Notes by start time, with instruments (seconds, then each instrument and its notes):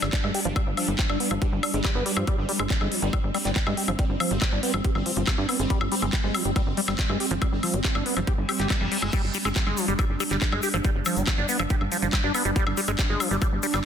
Already playing: synth texture G3 D4
0.02 analog synth bass G1, acid bass G3, clap, high woodblock
0.13 acid bass G3, kick, clap, closed hi-hat
0.24 analog synth bass G2, acid bass G#3, high woodblock
0.34 acid bass G4, open hi-hat
0.45 analog synth bass G1, acid bass F3, closed hi-hat
0.56 acid bass G3, kick, closed hi-hat, high woodblock
0.67 analog synth bass G1
0.77 acid bass F3, open hi-hat, high woodblock
0.88 analog synth bass G1, acid bass G3, closed hi-hat
0.99 acid bass G3, kick, clap, closed hi-hat
1.09 analog synth bass G1, acid bass D4, high woodblock
1.20 acid bass B3, open hi-hat
1.31 analog synth bass G1, acid bass F3, closed hi-hat, high woodblock
1.42 acid bass G4, kick, closed hi-hat
1.52 analog synth bass G1
1.63 acid bass D4, open hi-hat, high woodblock
1.74 analog synth bass G1, acid bass G#3, closed hi-hat
1.84 acid bass G3, kick, clap, closed hi-hat, high woodblock
1.95 analog synth bass G1, acid bass B3
2.06 acid bass G3, open hi-hat
2.17 analog synth bass G2, acid bass F3, high woodblock
2.27 acid bass G3, synth texture C4, kick, closed hi-hat, high woodblock
2.38 analog synth bass G1
2.49 acid bass G3, open hi-hat
2.59 analog synth bass G1, acid bass G#3, closed hi-hat, high woodblock
2.70 acid bass G3, kick, clap, closed hi-hat
2.81 analog synth bass G1, acid bass G#3, high woodblock
2.92 acid bass F3, open hi-hat
3.02 analog synth bass G1, acid bass G3, closed hi-hat
3.13 acid bass G3, kick, closed hi-hat, high woodblock
3.24 analog synth bass G1
3.34 acid bass G3, open hi-hat, high woodblock
3.45 analog synth bass G1, acid bass G3, clap, closed hi-hat
3.56 acid bass G3, kick, clap, closed hi-hat
3.67 analog synth bass G2, acid bass G#3, high woodblock
3.77 acid bass G4, open hi-hat
3.88 analog synth bass G1, acid bass F3, closed hi-hat, high woodblock
3.99 acid bass G3, kick, closed hi-hat
4.09 analog synth bass G1
4.20 acid bass F3, open hi-hat, high woodblock
4.31 analog synth bass G1, acid bass G3, closed hi-hat
4.42 acid bass G3, kick, clap, closed hi-hat, high woodblock
4.52 analog synth bass G1, acid bass D4
4.63 acid bass B3, open hi-hat
4.74 analog synth bass G1, acid bass F3, high woodblock
4.84 acid bass G4, kick, closed hi-hat
4.95 analog synth bass G1, high woodblock
5.06 acid bass F3, open hi-hat
5.17 analog synth bass G1, acid bass F3, closed hi-hat
5.27 acid bass G3, kick, clap, closed hi-hat, high woodblock
5.38 analog synth bass G2, acid bass D4
5.49 acid bass B3, open hi-hat, high woodblock
5.59 analog synth bass G1, acid bass G#3, closed hi-hat
5.70 acid bass G3, kick, closed hi-hat
5.81 analog synth bass G1, high woodblock
5.92 acid bass G3, open hi-hat
6.02 analog synth bass G1, acid bass G#3, closed hi-hat, high woodblock
6.13 acid bass G3, kick, clap, closed hi-hat
6.24 analog synth bass G1, acid bass G#3
6.34 acid bass F3, open hi-hat, high woodblock
6.45 analog synth bass G1, acid bass G3, closed hi-hat
6.56 acid bass G3, kick, closed hi-hat, high woodblock
6.67 analog synth bass G1
6.77 acid bass G3, open hi-hat
6.88 analog synth bass G1, acid bass G3, clap, closed hi-hat, high woodblock
6.99 acid bass G3, kick, clap, closed hi-hat
7.09 analog synth bass G2, acid bass G#3, high woodblock
7.20 acid bass G4, open hi-hat
7.31 analog synth bass G1, acid bass F3, closed hi-hat
7.42 acid bass G3, kick, closed hi-hat, high woodblock
7.52 analog synth bass G1
7.63 acid bass F3, open hi-hat, high woodblock
7.74 analog synth bass G1, acid bass G3, closed hi-hat
7.84 acid bass G3, kick, clap, closed hi-hat
7.95 analog synth bass G1, acid bass D4, high woodblock
8.06 acid bass B3, open hi-hat
8.17 analog synth bass G1, acid bass F3, closed hi-hat, high woodblock
8.27 acid bass G4, kick, closed hi-hat, reverse cymbal
8.38 analog synth bass G1
8.49 acid bass G4, open hi-hat, high woodblock
8.59 analog synth bass G1, acid bass G4, clap, closed hi-hat
8.70 acid bass G3, kick, clap, closed hi-hat, high woodblock
8.81 analog synth bass F1, acid bass G3
8.92 acid bass G3, open hi-hat
9.02 analog synth bass G1, acid bass G#3, high woodblock
9.13 acid bass G3, synth texture G3 D4, kick, closed hi-hat, crash, high woodblock, shaker
9.24 analog synth bass G1
9.34 acid bass G3, open hi-hat, shaker
9.45 analog synth bass G1, acid bass G#3, high woodblock, shaker
9.55 acid bass G3, kick, clap, closed hi-hat, shaker
9.67 analog synth bass G1, acid bass G#3, high woodblock
9.77 acid bass F3, open hi-hat, shaker
9.88 analog synth bass G1, acid bass G3, closed hi-hat, shaker
9.99 acid bass G3, kick, closed hi-hat, high woodblock, shaker
10.09 analog synth bass G1
10.20 acid bass G3, open hi-hat, high woodblock, shaker
10.31 analog synth bass G1, acid bass G3, clap, closed hi-hat, shaker
10.41 acid bass G3, kick, clap, closed hi-hat, shaker
10.52 analog synth bass G2, acid bass G#3, high woodblock
10.63 acid bass G4, open hi-hat, shaker
10.74 analog synth bass G1, acid bass F3, closed hi-hat, high woodblock, shaker
10.84 acid bass G3, kick, closed hi-hat, shaker
10.95 analog synth bass G1
11.05 acid bass F3, open hi-hat, high woodblock, shaker
11.17 analog synth bass G1, acid bass G3, closed hi-hat, shaker
11.27 acid bass G3, kick, clap, closed hi-hat, high woodblock, shaker
11.38 analog synth bass G1, acid bass D4
11.49 acid bass B3, open hi-hat, shaker
11.59 analog synth bass G1, acid bass F3, high woodblock, shaker
11.70 acid bass G4, kick, closed hi-hat, shaker
11.81 analog synth bass G1, high woodblock
11.92 acid bass F3, open hi-hat, shaker
12.02 analog synth bass G1, acid bass F3, closed hi-hat, shaker
12.13 acid bass G3, kick, clap, closed hi-hat, high woodblock, shaker
12.24 analog synth bass G2, acid bass D4
12.34 acid bass B3, open hi-hat, high woodblock, shaker
12.45 analog synth bass G1, acid bass G3, closed hi-hat, shaker
12.56 acid bass G3, kick, closed hi-hat, shaker
12.67 analog synth bass G1, high woodblock
12.77 acid bass G3, open hi-hat, shaker
12.87 analog synth bass G1, acid bass G#3, closed hi-hat, high woodblock, shaker
12.99 acid bass G3, kick, clap, closed hi-hat, shaker
13.09 analog synth bass G1, acid bass G#3
13.20 acid bass F3, open hi-hat, high woodblock, shaker
13.31 analog synth bass G1, acid bass G3, closed hi-hat, shaker
13.42 acid bass G3, kick, closed hi-hat, high woodblock, shaker
13.52 analog synth bass G1
13.63 acid bass G3, open hi-hat, shaker
13.74 analog synth bass G1, acid bass G3, clap, closed hi-hat, high woodblock, shaker